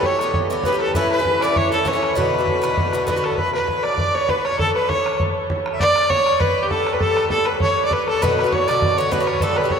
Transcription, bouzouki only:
0.00 0.21 E3 soft
0.00 0.20 B3 soft
0.00 0.20 G4 medium
0.21 0.49 G2 medium
0.21 0.49 E3 medium
0.21 0.51 B3 medium
0.21 0.51 G4 medium
0.50 0.64 G2 medium
0.50 0.65 E3 medium
0.50 0.65 B3 medium
0.50 0.66 G4 medium
0.65 0.73 G2 medium
0.65 0.73 E3 medium
0.65 0.73 B3 medium
0.65 0.71 G4 medium
0.73 0.94 E3 soft
0.73 0.95 B3 soft
0.73 0.95 G4 medium
0.95 1.18 A2 medium
0.95 1.18 E3 medium
0.95 1.19 C#4 medium
0.95 1.18 E4 medium
1.19 1.42 E3 soft
1.19 1.42 C#4 soft
1.19 1.42 E4 medium
1.42 1.71 A2 medium
1.42 1.71 E3 medium
1.42 1.71 C#4 medium
1.42 1.73 E4 medium
1.72 1.84 A2 medium
1.72 1.84 E3 medium
1.72 1.85 C#4 medium
1.72 1.86 E4 medium
1.85 1.94 A2 medium
1.85 1.94 E3 medium
1.85 1.94 C#4 medium
1.85 1.92 E4 medium
1.93 2.16 E3 soft
1.93 2.16 C#4 medium
1.93 2.16 E4 medium
2.15 2.39 B2 medium
2.15 2.39 D3 medium
2.15 2.38 B3 medium
2.15 2.37 F#4 medium
2.39 2.62 D3 soft
2.39 2.62 B3 soft
2.39 2.62 F#4 soft
2.62 2.92 B2 medium
2.62 2.93 D3 medium
2.62 2.93 B3 medium
2.62 2.95 F#4 medium
2.93 3.05 B2 medium
2.93 3.06 D3 medium
2.93 3.07 B3 medium
2.93 3.08 F#4 medium
3.07 3.15 B2 medium
3.07 3.16 D3 medium
3.07 3.16 B3 medium
3.07 3.15 F#4 medium
3.16 3.39 D3 soft
3.16 3.39 B3 medium
3.16 3.38 F#4 medium
8.22 8.45 B2 medium
8.22 8.45 D3 medium
8.22 8.44 B3 medium
8.22 8.43 F#4 medium
8.44 8.68 D3 soft
8.44 8.68 B3 soft
8.44 8.67 F#4 medium
8.68 8.97 B2 medium
8.68 8.97 D3 medium
8.68 8.99 B3 medium
8.68 8.99 F#4 medium
8.98 9.10 B2 medium
8.98 9.11 D3 medium
8.98 9.11 B3 medium
8.98 9.12 F#4 medium
9.12 9.20 B2 medium
9.12 9.20 D3 medium
9.12 9.20 B3 medium
9.12 9.19 F#4 medium
9.20 9.41 D3 soft
9.20 9.42 B3 medium
9.20 9.42 F#4 medium
9.42 9.65 G2 medium
9.42 9.64 D3 medium
9.42 9.64 B3 medium
9.42 9.63 G4 medium
9.64 9.80 D3 soft
9.64 9.80 B3 soft
9.64 9.80 G4 soft

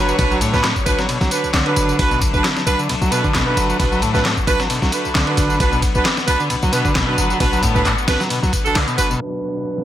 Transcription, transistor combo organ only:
0.08 0.17 F#3 medium
0.19 0.25 B2 medium
0.31 0.41 F#3 medium
0.41 0.62 A2 loud
0.64 0.74 A2 medium
0.99 1.07 F#3 medium
1.09 1.19 B2 medium
1.21 1.31 F#3 medium
1.54 1.98 D3 medium
2.11 2.21 B2 medium
2.79 2.88 D3 medium
2.89 2.95 B2 medium
3.01 3.11 F#3 medium
3.12 3.23 B2 loud
3.24 3.32 D3 loud
3.34 3.56 B2 medium
3.57 3.68 F#3 medium
3.69 3.78 F#3 medium
3.80 3.86 B2 medium
3.92 4.02 F#3 medium
4.02 4.24 A2 loud
4.25 4.35 A2 medium
4.60 4.68 F#3 medium
4.70 4.80 B2 medium
4.82 4.92 F#3 medium
5.14 5.59 D3 medium
5.72 5.82 B2 medium
6.40 6.49 D3 medium
6.50 6.56 B2 medium
6.63 6.72 F#3 medium
6.73 6.84 B2 loud
6.85 6.93 D3 loud
6.96 7.17 B2 medium
7.18 7.29 F#3 medium
7.30 7.39 F#3 medium
7.40 7.46 B2 medium
7.53 7.62 F#3 medium
7.63 7.84 A2 loud
7.85 7.95 A2 medium
8.20 8.29 F#3 medium
8.30 8.40 B2 medium
8.43 8.53 F#3 medium
8.75 8.87 D3 medium
8.88 8.97 B2 medium
9.10 9.20 B2 loud

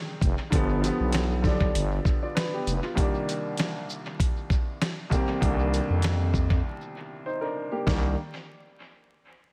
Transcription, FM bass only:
0.22 0.35 F1 loud
0.52 0.91 G1 loud
1.00 1.71 B1 medium
1.75 2.00 G1 loud
2.67 2.80 F1 loud
5.42 5.81 C2 loud
5.90 6.61 F2 medium
7.87 8.15 C2 loud

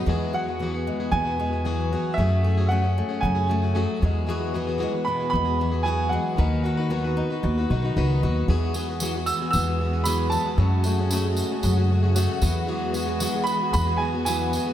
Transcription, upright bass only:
0.07 0.89 E2 medium
1.12 1.94 E2 medium
2.18 3.00 F#2 medium
3.23 3.84 F#2 medium
4.02 4.84 E2 medium
5.33 6.15 E2 medium
6.38 7.20 D#2 medium
7.44 7.64 D#2 medium
7.70 7.93 B1 medium
7.96 8.20 C#2 medium
8.23 8.46 D#2 medium
8.48 9.30 E2 medium
9.54 10.36 E2 medium
10.58 11.40 F#2 medium
11.63 12.25 F#2 medium
12.42 13.25 E2 medium
13.74 14.56 E2 medium

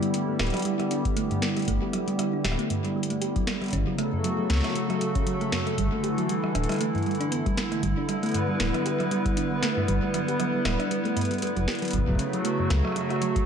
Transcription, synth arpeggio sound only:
0.03 0.13 G3 medium
0.14 0.23 G3 medium
0.28 0.38 A3 medium
0.40 0.45 G4 medium
0.54 0.61 F#3 medium
0.65 0.74 G3 medium
0.80 0.90 G3 medium
0.91 0.99 D4 medium
1.05 1.12 G3 medium
1.16 1.29 A3 loud
1.31 1.38 G2 medium
1.42 1.55 G3 medium
1.56 1.63 G3 medium
1.68 1.81 A3 medium
1.82 1.86 G4 medium
1.93 2.02 F#3 medium
2.08 2.14 G3 medium
2.19 2.32 G3 medium
2.33 2.40 D4 medium
2.45 2.53 G3 medium
2.59 2.69 A3 loud
2.70 2.79 G2 loud
2.85 2.95 G3 medium
2.96 3.04 G3 medium
3.10 3.20 A3 medium
3.22 3.27 G4 medium
3.36 3.43 F#3 medium
3.47 3.56 G3 medium
3.62 3.72 G3 medium
3.73 3.81 C#4 medium
3.87 3.94 F#3 medium
3.98 4.11 A3 loud
4.13 4.20 F#2 loud
4.24 4.37 F#3 medium
4.38 4.45 F#3 medium
4.50 4.63 A3 medium
4.64 4.68 F#4 medium
4.75 4.84 F#3 medium
4.90 4.96 F#3 medium
5.01 5.14 F#3 medium
5.15 5.22 C#4 medium
5.27 5.35 F#3 medium
5.41 5.51 A3 loud
5.52 5.61 F#2 loud
5.67 5.77 F#3 medium
5.78 5.87 G3 medium
5.93 6.03 A3 medium
6.04 6.09 G4 medium
6.18 6.25 F#3 medium
6.29 6.38 G3 medium
6.44 6.54 G3 medium
6.55 6.64 D4 medium
6.69 6.76 G3 medium
6.81 6.93 A3 loud
6.95 7.02 G2 loud
7.06 7.15 G3 medium
7.20 7.27 D4 loud
7.32 7.40 B3 medium
7.46 7.53 G3 medium
7.57 7.66 G3 medium
7.72 7.82 A3 medium
7.83 7.96 G3 medium
7.97 8.04 D4 medium
8.09 8.17 G3 medium
8.23 8.33 A3 loud
8.34 8.43 G2 loud
8.49 8.59 G3 medium
8.60 8.69 G3 medium
8.74 8.85 F#3 medium
8.86 8.91 G4 medium
9.00 9.07 F#3 medium
9.11 9.20 G3 medium
9.26 9.36 G3 medium
9.37 9.46 D4 medium
9.51 9.58 G3 medium
9.63 9.75 A3 loud
9.77 9.84 G2 loud
9.88 10.01 G3 medium
10.03 10.09 G3 medium
10.14 10.27 F#3 medium
10.28 10.32 G4 medium
10.40 10.48 F#3 medium
10.54 10.61 G3 medium
10.65 10.78 G3 medium
10.79 10.86 D4 medium
10.91 10.99 G3 medium
11.05 11.15 A3 loud
11.16 11.25 G2 loud
11.31 11.41 G3 medium
11.42 11.51 G3 medium
11.57 11.67 F#3 medium
11.68 11.73 G4 medium
11.82 11.89 F#3 medium
11.94 12.02 F#3 medium
12.08 12.18 F#3 medium
12.19 12.28 C#4 medium
12.34 12.40 F#3 medium
12.45 12.58 A3 loud
12.59 12.66 F#2 loud
12.70 12.83 F#3 medium
12.85 12.91 F#3 medium
12.96 13.09 F#3 medium
13.10 13.14 F#4 medium
13.22 13.30 F#3 medium
13.36 13.43 F#3 medium

